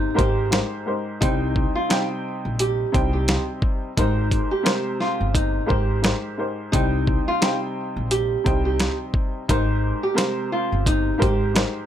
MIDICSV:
0, 0, Header, 1, 5, 480
1, 0, Start_track
1, 0, Key_signature, -3, "minor"
1, 0, Tempo, 689655
1, 846, Time_signature, 4, 2, 24, 8
1, 8255, End_track
2, 0, Start_track
2, 0, Title_t, "Upright piano"
2, 0, Program_c, 0, 0
2, 0, Note_on_c, 0, 72, 105
2, 70, Note_off_c, 0, 72, 0
2, 99, Note_on_c, 0, 44, 83
2, 103, Note_on_c, 0, 56, 84
2, 106, Note_on_c, 0, 67, 90
2, 110, Note_on_c, 0, 70, 89
2, 114, Note_on_c, 0, 72, 100
2, 336, Note_off_c, 0, 44, 0
2, 338, Note_off_c, 0, 56, 0
2, 340, Note_off_c, 0, 67, 0
2, 342, Note_off_c, 0, 70, 0
2, 343, Note_off_c, 0, 72, 0
2, 348, Note_on_c, 0, 44, 75
2, 352, Note_on_c, 0, 56, 65
2, 356, Note_on_c, 0, 67, 75
2, 359, Note_on_c, 0, 70, 69
2, 363, Note_on_c, 0, 72, 83
2, 581, Note_off_c, 0, 44, 0
2, 583, Note_off_c, 0, 56, 0
2, 584, Note_off_c, 0, 67, 0
2, 586, Note_off_c, 0, 70, 0
2, 588, Note_off_c, 0, 72, 0
2, 595, Note_on_c, 0, 44, 71
2, 600, Note_on_c, 0, 56, 64
2, 604, Note_on_c, 0, 67, 68
2, 606, Note_on_c, 0, 70, 61
2, 610, Note_on_c, 0, 72, 79
2, 824, Note_off_c, 0, 44, 0
2, 826, Note_off_c, 0, 56, 0
2, 828, Note_off_c, 0, 67, 0
2, 830, Note_off_c, 0, 70, 0
2, 832, Note_off_c, 0, 72, 0
2, 839, Note_on_c, 0, 48, 88
2, 843, Note_on_c, 0, 55, 86
2, 846, Note_on_c, 0, 63, 86
2, 850, Note_on_c, 0, 72, 83
2, 854, Note_on_c, 0, 79, 97
2, 1289, Note_off_c, 0, 48, 0
2, 1291, Note_off_c, 0, 55, 0
2, 1293, Note_off_c, 0, 63, 0
2, 1295, Note_off_c, 0, 72, 0
2, 1297, Note_off_c, 0, 79, 0
2, 1318, Note_on_c, 0, 48, 96
2, 1321, Note_on_c, 0, 55, 92
2, 1325, Note_on_c, 0, 63, 83
2, 1329, Note_on_c, 0, 72, 83
2, 1332, Note_on_c, 0, 79, 102
2, 1992, Note_off_c, 0, 48, 0
2, 1994, Note_off_c, 0, 55, 0
2, 1996, Note_off_c, 0, 63, 0
2, 1998, Note_off_c, 0, 72, 0
2, 1999, Note_off_c, 0, 79, 0
2, 2034, Note_on_c, 0, 48, 92
2, 2038, Note_on_c, 0, 55, 83
2, 2041, Note_on_c, 0, 63, 83
2, 2045, Note_on_c, 0, 72, 85
2, 2049, Note_on_c, 0, 79, 98
2, 2710, Note_off_c, 0, 48, 0
2, 2712, Note_off_c, 0, 55, 0
2, 2714, Note_off_c, 0, 63, 0
2, 2716, Note_off_c, 0, 72, 0
2, 2718, Note_off_c, 0, 79, 0
2, 2762, Note_on_c, 0, 44, 82
2, 2766, Note_on_c, 0, 56, 79
2, 2769, Note_on_c, 0, 67, 76
2, 2773, Note_on_c, 0, 70, 88
2, 2777, Note_on_c, 0, 72, 103
2, 3211, Note_off_c, 0, 44, 0
2, 3213, Note_off_c, 0, 56, 0
2, 3214, Note_off_c, 0, 67, 0
2, 3216, Note_off_c, 0, 70, 0
2, 3218, Note_off_c, 0, 72, 0
2, 3221, Note_on_c, 0, 48, 92
2, 3225, Note_on_c, 0, 56, 88
2, 3228, Note_on_c, 0, 67, 84
2, 3232, Note_on_c, 0, 70, 86
2, 3236, Note_on_c, 0, 72, 107
2, 3904, Note_off_c, 0, 48, 0
2, 3906, Note_off_c, 0, 56, 0
2, 3907, Note_off_c, 0, 67, 0
2, 3909, Note_off_c, 0, 70, 0
2, 3911, Note_off_c, 0, 72, 0
2, 3940, Note_on_c, 0, 44, 83
2, 3943, Note_on_c, 0, 56, 84
2, 3947, Note_on_c, 0, 67, 86
2, 3951, Note_on_c, 0, 70, 86
2, 3954, Note_on_c, 0, 72, 99
2, 4176, Note_off_c, 0, 44, 0
2, 4178, Note_off_c, 0, 56, 0
2, 4180, Note_off_c, 0, 67, 0
2, 4182, Note_off_c, 0, 70, 0
2, 4183, Note_off_c, 0, 72, 0
2, 4187, Note_on_c, 0, 44, 74
2, 4191, Note_on_c, 0, 56, 66
2, 4195, Note_on_c, 0, 67, 74
2, 4198, Note_on_c, 0, 70, 66
2, 4202, Note_on_c, 0, 72, 83
2, 4420, Note_off_c, 0, 44, 0
2, 4422, Note_off_c, 0, 56, 0
2, 4424, Note_off_c, 0, 67, 0
2, 4425, Note_off_c, 0, 70, 0
2, 4427, Note_off_c, 0, 72, 0
2, 4437, Note_on_c, 0, 44, 74
2, 4440, Note_on_c, 0, 56, 65
2, 4444, Note_on_c, 0, 67, 66
2, 4447, Note_on_c, 0, 70, 63
2, 4451, Note_on_c, 0, 72, 73
2, 4665, Note_off_c, 0, 44, 0
2, 4666, Note_off_c, 0, 56, 0
2, 4669, Note_off_c, 0, 67, 0
2, 4670, Note_off_c, 0, 70, 0
2, 4672, Note_off_c, 0, 72, 0
2, 4678, Note_on_c, 0, 48, 86
2, 4682, Note_on_c, 0, 55, 83
2, 4686, Note_on_c, 0, 63, 86
2, 4689, Note_on_c, 0, 72, 86
2, 4692, Note_on_c, 0, 79, 97
2, 5129, Note_off_c, 0, 48, 0
2, 5131, Note_off_c, 0, 55, 0
2, 5133, Note_off_c, 0, 63, 0
2, 5134, Note_off_c, 0, 72, 0
2, 5136, Note_off_c, 0, 79, 0
2, 5156, Note_on_c, 0, 48, 94
2, 5160, Note_on_c, 0, 55, 89
2, 5164, Note_on_c, 0, 63, 82
2, 5168, Note_on_c, 0, 72, 82
2, 5171, Note_on_c, 0, 79, 100
2, 5831, Note_off_c, 0, 48, 0
2, 5833, Note_off_c, 0, 55, 0
2, 5835, Note_off_c, 0, 63, 0
2, 5837, Note_off_c, 0, 72, 0
2, 5839, Note_off_c, 0, 79, 0
2, 5875, Note_on_c, 0, 48, 89
2, 5878, Note_on_c, 0, 55, 84
2, 5882, Note_on_c, 0, 63, 84
2, 5886, Note_on_c, 0, 72, 85
2, 5889, Note_on_c, 0, 79, 97
2, 6551, Note_off_c, 0, 48, 0
2, 6552, Note_off_c, 0, 55, 0
2, 6554, Note_off_c, 0, 63, 0
2, 6556, Note_off_c, 0, 72, 0
2, 6558, Note_off_c, 0, 79, 0
2, 6602, Note_on_c, 0, 44, 84
2, 6605, Note_on_c, 0, 56, 78
2, 6609, Note_on_c, 0, 67, 77
2, 6613, Note_on_c, 0, 70, 86
2, 6616, Note_on_c, 0, 72, 102
2, 7051, Note_off_c, 0, 44, 0
2, 7052, Note_off_c, 0, 56, 0
2, 7054, Note_off_c, 0, 67, 0
2, 7056, Note_off_c, 0, 70, 0
2, 7058, Note_off_c, 0, 72, 0
2, 7061, Note_on_c, 0, 48, 91
2, 7064, Note_on_c, 0, 56, 90
2, 7069, Note_on_c, 0, 67, 83
2, 7072, Note_on_c, 0, 70, 92
2, 7076, Note_on_c, 0, 72, 107
2, 7743, Note_off_c, 0, 48, 0
2, 7745, Note_off_c, 0, 56, 0
2, 7747, Note_off_c, 0, 67, 0
2, 7749, Note_off_c, 0, 70, 0
2, 7751, Note_off_c, 0, 72, 0
2, 7780, Note_on_c, 0, 44, 82
2, 7783, Note_on_c, 0, 56, 84
2, 7787, Note_on_c, 0, 67, 92
2, 7790, Note_on_c, 0, 70, 91
2, 7795, Note_on_c, 0, 72, 97
2, 8016, Note_off_c, 0, 44, 0
2, 8018, Note_off_c, 0, 56, 0
2, 8020, Note_off_c, 0, 67, 0
2, 8022, Note_off_c, 0, 70, 0
2, 8024, Note_off_c, 0, 72, 0
2, 8030, Note_on_c, 0, 44, 75
2, 8034, Note_on_c, 0, 56, 67
2, 8037, Note_on_c, 0, 67, 74
2, 8041, Note_on_c, 0, 70, 71
2, 8045, Note_on_c, 0, 72, 84
2, 8255, Note_off_c, 0, 44, 0
2, 8255, Note_off_c, 0, 56, 0
2, 8255, Note_off_c, 0, 67, 0
2, 8255, Note_off_c, 0, 70, 0
2, 8255, Note_off_c, 0, 72, 0
2, 8255, End_track
3, 0, Start_track
3, 0, Title_t, "Nylon-string guitar"
3, 0, Program_c, 1, 24
3, 0, Note_on_c, 1, 63, 92
3, 103, Note_off_c, 1, 63, 0
3, 131, Note_on_c, 1, 67, 84
3, 345, Note_off_c, 1, 67, 0
3, 840, Note_on_c, 1, 63, 86
3, 1196, Note_off_c, 1, 63, 0
3, 1221, Note_on_c, 1, 65, 85
3, 1438, Note_off_c, 1, 65, 0
3, 1809, Note_on_c, 1, 67, 84
3, 2161, Note_off_c, 1, 67, 0
3, 2179, Note_on_c, 1, 67, 71
3, 2397, Note_off_c, 1, 67, 0
3, 2769, Note_on_c, 1, 63, 96
3, 3121, Note_off_c, 1, 63, 0
3, 3141, Note_on_c, 1, 67, 69
3, 3465, Note_off_c, 1, 67, 0
3, 3484, Note_on_c, 1, 65, 87
3, 3701, Note_off_c, 1, 65, 0
3, 3718, Note_on_c, 1, 63, 85
3, 3938, Note_off_c, 1, 63, 0
3, 3960, Note_on_c, 1, 67, 78
3, 4179, Note_off_c, 1, 67, 0
3, 4678, Note_on_c, 1, 63, 101
3, 5035, Note_off_c, 1, 63, 0
3, 5066, Note_on_c, 1, 65, 94
3, 5280, Note_off_c, 1, 65, 0
3, 5645, Note_on_c, 1, 67, 90
3, 5999, Note_off_c, 1, 67, 0
3, 6021, Note_on_c, 1, 67, 73
3, 6238, Note_off_c, 1, 67, 0
3, 6606, Note_on_c, 1, 63, 94
3, 6960, Note_off_c, 1, 63, 0
3, 6983, Note_on_c, 1, 67, 76
3, 7306, Note_off_c, 1, 67, 0
3, 7324, Note_on_c, 1, 65, 83
3, 7541, Note_off_c, 1, 65, 0
3, 7570, Note_on_c, 1, 63, 90
3, 7784, Note_off_c, 1, 63, 0
3, 7813, Note_on_c, 1, 67, 79
3, 8026, Note_off_c, 1, 67, 0
3, 8255, End_track
4, 0, Start_track
4, 0, Title_t, "Upright bass"
4, 0, Program_c, 2, 32
4, 131, Note_on_c, 2, 32, 89
4, 418, Note_off_c, 2, 32, 0
4, 849, Note_on_c, 2, 36, 111
4, 1136, Note_off_c, 2, 36, 0
4, 1706, Note_on_c, 2, 34, 85
4, 1968, Note_off_c, 2, 34, 0
4, 2051, Note_on_c, 2, 36, 96
4, 2338, Note_off_c, 2, 36, 0
4, 2768, Note_on_c, 2, 32, 108
4, 3056, Note_off_c, 2, 32, 0
4, 3623, Note_on_c, 2, 31, 87
4, 3887, Note_off_c, 2, 31, 0
4, 3971, Note_on_c, 2, 32, 87
4, 4258, Note_off_c, 2, 32, 0
4, 4688, Note_on_c, 2, 36, 109
4, 4976, Note_off_c, 2, 36, 0
4, 5543, Note_on_c, 2, 34, 87
4, 5807, Note_off_c, 2, 34, 0
4, 5890, Note_on_c, 2, 36, 98
4, 6177, Note_off_c, 2, 36, 0
4, 6608, Note_on_c, 2, 32, 106
4, 6896, Note_off_c, 2, 32, 0
4, 7464, Note_on_c, 2, 31, 89
4, 7727, Note_off_c, 2, 31, 0
4, 7810, Note_on_c, 2, 32, 87
4, 8097, Note_off_c, 2, 32, 0
4, 8255, End_track
5, 0, Start_track
5, 0, Title_t, "Drums"
5, 129, Note_on_c, 9, 36, 98
5, 130, Note_on_c, 9, 42, 56
5, 199, Note_off_c, 9, 36, 0
5, 200, Note_off_c, 9, 42, 0
5, 363, Note_on_c, 9, 42, 75
5, 368, Note_on_c, 9, 38, 119
5, 432, Note_off_c, 9, 42, 0
5, 437, Note_off_c, 9, 38, 0
5, 847, Note_on_c, 9, 36, 105
5, 849, Note_on_c, 9, 42, 98
5, 917, Note_off_c, 9, 36, 0
5, 918, Note_off_c, 9, 42, 0
5, 1084, Note_on_c, 9, 36, 85
5, 1154, Note_off_c, 9, 36, 0
5, 1324, Note_on_c, 9, 42, 84
5, 1328, Note_on_c, 9, 38, 104
5, 1394, Note_off_c, 9, 42, 0
5, 1398, Note_off_c, 9, 38, 0
5, 1805, Note_on_c, 9, 42, 85
5, 1875, Note_off_c, 9, 42, 0
5, 2049, Note_on_c, 9, 36, 99
5, 2050, Note_on_c, 9, 42, 56
5, 2119, Note_off_c, 9, 36, 0
5, 2119, Note_off_c, 9, 42, 0
5, 2283, Note_on_c, 9, 42, 77
5, 2288, Note_on_c, 9, 38, 116
5, 2352, Note_off_c, 9, 42, 0
5, 2357, Note_off_c, 9, 38, 0
5, 2520, Note_on_c, 9, 36, 89
5, 2590, Note_off_c, 9, 36, 0
5, 2766, Note_on_c, 9, 36, 106
5, 2767, Note_on_c, 9, 42, 99
5, 2836, Note_off_c, 9, 36, 0
5, 2836, Note_off_c, 9, 42, 0
5, 3003, Note_on_c, 9, 36, 84
5, 3006, Note_on_c, 9, 42, 56
5, 3073, Note_off_c, 9, 36, 0
5, 3075, Note_off_c, 9, 42, 0
5, 3243, Note_on_c, 9, 42, 84
5, 3246, Note_on_c, 9, 38, 102
5, 3312, Note_off_c, 9, 42, 0
5, 3316, Note_off_c, 9, 38, 0
5, 3484, Note_on_c, 9, 38, 33
5, 3553, Note_off_c, 9, 38, 0
5, 3721, Note_on_c, 9, 36, 96
5, 3725, Note_on_c, 9, 42, 87
5, 3791, Note_off_c, 9, 36, 0
5, 3794, Note_off_c, 9, 42, 0
5, 3969, Note_on_c, 9, 36, 94
5, 4039, Note_off_c, 9, 36, 0
5, 4202, Note_on_c, 9, 42, 76
5, 4207, Note_on_c, 9, 38, 116
5, 4272, Note_off_c, 9, 42, 0
5, 4277, Note_off_c, 9, 38, 0
5, 4687, Note_on_c, 9, 36, 105
5, 4687, Note_on_c, 9, 42, 96
5, 4756, Note_off_c, 9, 36, 0
5, 4757, Note_off_c, 9, 42, 0
5, 4924, Note_on_c, 9, 36, 85
5, 4993, Note_off_c, 9, 36, 0
5, 5163, Note_on_c, 9, 42, 82
5, 5167, Note_on_c, 9, 38, 106
5, 5233, Note_off_c, 9, 42, 0
5, 5237, Note_off_c, 9, 38, 0
5, 5645, Note_on_c, 9, 42, 87
5, 5714, Note_off_c, 9, 42, 0
5, 5889, Note_on_c, 9, 36, 97
5, 5890, Note_on_c, 9, 42, 57
5, 5959, Note_off_c, 9, 36, 0
5, 5959, Note_off_c, 9, 42, 0
5, 6122, Note_on_c, 9, 42, 76
5, 6127, Note_on_c, 9, 38, 117
5, 6191, Note_off_c, 9, 42, 0
5, 6196, Note_off_c, 9, 38, 0
5, 6360, Note_on_c, 9, 36, 87
5, 6430, Note_off_c, 9, 36, 0
5, 6607, Note_on_c, 9, 36, 108
5, 6608, Note_on_c, 9, 42, 95
5, 6676, Note_off_c, 9, 36, 0
5, 6677, Note_off_c, 9, 42, 0
5, 7084, Note_on_c, 9, 42, 82
5, 7088, Note_on_c, 9, 38, 104
5, 7154, Note_off_c, 9, 42, 0
5, 7157, Note_off_c, 9, 38, 0
5, 7561, Note_on_c, 9, 36, 100
5, 7565, Note_on_c, 9, 42, 85
5, 7631, Note_off_c, 9, 36, 0
5, 7634, Note_off_c, 9, 42, 0
5, 7809, Note_on_c, 9, 36, 97
5, 7810, Note_on_c, 9, 42, 57
5, 7879, Note_off_c, 9, 36, 0
5, 7880, Note_off_c, 9, 42, 0
5, 8043, Note_on_c, 9, 42, 76
5, 8048, Note_on_c, 9, 38, 115
5, 8113, Note_off_c, 9, 42, 0
5, 8118, Note_off_c, 9, 38, 0
5, 8255, End_track
0, 0, End_of_file